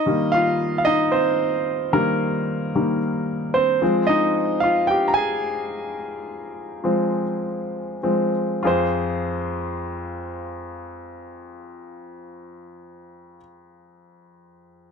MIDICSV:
0, 0, Header, 1, 2, 480
1, 0, Start_track
1, 0, Key_signature, -4, "minor"
1, 0, Tempo, 536673
1, 1730, Time_signature, 4, 2, 24, 8
1, 4131, Tempo, 556070
1, 6051, Tempo, 603622
1, 7491, Tempo, 632244
1, 12247, End_track
2, 0, Start_track
2, 0, Title_t, "Grand piano"
2, 0, Program_c, 0, 0
2, 0, Control_c, 0, 64, 127
2, 0, Note_on_c, 0, 63, 68
2, 0, Note_on_c, 0, 75, 92
2, 55, Note_on_c, 0, 51, 46
2, 62, Note_on_c, 0, 55, 40
2, 71, Note_on_c, 0, 58, 46
2, 264, Note_off_c, 0, 63, 0
2, 285, Note_on_c, 0, 77, 82
2, 304, Note_off_c, 0, 75, 0
2, 308, Note_on_c, 0, 65, 67
2, 686, Note_off_c, 0, 77, 0
2, 690, Note_off_c, 0, 65, 0
2, 700, Note_on_c, 0, 77, 68
2, 736, Note_off_c, 0, 51, 0
2, 740, Note_off_c, 0, 55, 0
2, 745, Note_off_c, 0, 58, 0
2, 758, Note_on_c, 0, 75, 91
2, 765, Note_off_c, 0, 77, 0
2, 775, Note_on_c, 0, 63, 66
2, 996, Note_off_c, 0, 63, 0
2, 998, Note_on_c, 0, 72, 73
2, 1010, Note_on_c, 0, 60, 56
2, 1011, Note_off_c, 0, 75, 0
2, 1694, Note_off_c, 0, 60, 0
2, 1725, Note_on_c, 0, 51, 44
2, 1727, Note_on_c, 0, 70, 70
2, 1735, Note_on_c, 0, 55, 41
2, 1738, Note_on_c, 0, 58, 52
2, 1746, Note_off_c, 0, 72, 0
2, 2412, Note_off_c, 0, 51, 0
2, 2416, Note_off_c, 0, 55, 0
2, 2451, Note_off_c, 0, 58, 0
2, 2462, Note_on_c, 0, 51, 38
2, 2464, Note_on_c, 0, 55, 34
2, 2465, Note_on_c, 0, 58, 44
2, 2653, Note_off_c, 0, 70, 0
2, 2672, Note_off_c, 0, 51, 0
2, 2673, Note_off_c, 0, 55, 0
2, 2674, Note_off_c, 0, 58, 0
2, 3166, Note_on_c, 0, 72, 74
2, 3190, Note_on_c, 0, 60, 54
2, 3412, Note_off_c, 0, 60, 0
2, 3413, Note_on_c, 0, 53, 45
2, 3421, Note_on_c, 0, 56, 42
2, 3424, Control_c, 0, 64, 0
2, 3426, Note_on_c, 0, 60, 55
2, 3576, Control_c, 0, 64, 127
2, 3614, Note_off_c, 0, 72, 0
2, 3637, Note_on_c, 0, 75, 76
2, 3662, Note_on_c, 0, 63, 64
2, 3731, Note_off_c, 0, 53, 0
2, 3735, Note_off_c, 0, 56, 0
2, 3738, Note_off_c, 0, 60, 0
2, 4104, Note_off_c, 0, 63, 0
2, 4117, Note_on_c, 0, 77, 75
2, 4139, Note_off_c, 0, 75, 0
2, 4146, Note_on_c, 0, 65, 62
2, 4350, Note_on_c, 0, 79, 72
2, 4357, Note_off_c, 0, 65, 0
2, 4366, Note_off_c, 0, 77, 0
2, 4379, Note_on_c, 0, 67, 52
2, 4527, Note_on_c, 0, 82, 60
2, 4534, Note_off_c, 0, 67, 0
2, 4536, Note_off_c, 0, 79, 0
2, 4579, Note_on_c, 0, 80, 78
2, 4595, Note_off_c, 0, 82, 0
2, 4607, Note_on_c, 0, 68, 62
2, 6045, Note_on_c, 0, 53, 44
2, 6050, Note_on_c, 0, 56, 36
2, 6056, Note_on_c, 0, 60, 42
2, 6357, Note_off_c, 0, 53, 0
2, 6359, Note_off_c, 0, 56, 0
2, 6362, Note_off_c, 0, 60, 0
2, 6955, Note_off_c, 0, 80, 0
2, 6968, Note_off_c, 0, 68, 0
2, 6996, Note_on_c, 0, 53, 37
2, 6999, Note_on_c, 0, 60, 43
2, 7000, Note_on_c, 0, 56, 36
2, 7217, Note_off_c, 0, 53, 0
2, 7219, Note_off_c, 0, 56, 0
2, 7219, Note_off_c, 0, 60, 0
2, 7469, Note_on_c, 0, 65, 57
2, 7487, Note_on_c, 0, 41, 60
2, 7487, Note_on_c, 0, 68, 51
2, 7500, Control_c, 0, 64, 0
2, 7503, Note_on_c, 0, 72, 68
2, 7624, Control_c, 0, 64, 127
2, 11054, Note_off_c, 0, 65, 0
2, 11070, Note_off_c, 0, 68, 0
2, 11071, Note_off_c, 0, 41, 0
2, 11086, Note_off_c, 0, 72, 0
2, 12247, End_track
0, 0, End_of_file